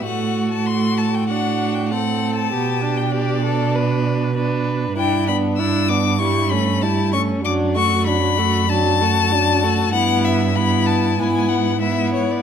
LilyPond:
<<
  \new Staff \with { instrumentName = "Violin" } { \time 4/4 \key g \major \tempo 4 = 97 fis''8. a''16 c'''8 a''16 g''16 fis''8. g''16 fis''8. a''16~ | a''8. g''16 d''4. r4. | \key d \major g''8 b''8 e'''8 d'''8 cis'''8 b''8 a''8 cis'''8 | d'''8 cis'''8 b''4 a''2 |
fis''8 e''8 b''8 a''8 gis''8 fis''8 e''8 cis''16 d''16 | }
  \new Staff \with { instrumentName = "Violin" } { \time 4/4 \key g \major fis'2 fis'4 a'4 | g'4 g'8 a'8 b'4 b'4 | \key d \major e'8 d'8 e'8 d'8 e'8 cis'8 e'8 cis'8 | d'8 fis'8 d'8 fis'8 d'8 fis'8 d'8 fis'8 |
e'4 e'4 e'4 e'4 | }
  \new Staff \with { instrumentName = "Viola" } { \time 4/4 \key g \major a4 a4 d'4 c'4 | b8 d'2~ d'8 d'4 | \key d \major d'8 b8 d'8 b8 g8 a8 g8 a8 | fis8 a8 fis8 a8 fis8 a8 fis8 a8 |
b4 b4 b4 b4 | }
  \new Staff \with { instrumentName = "Cello" } { \clef bass \time 4/4 \key g \major a,1 | b,1 | \key d \major g,1 | fis,1 |
g,2 gis,2 | }
>>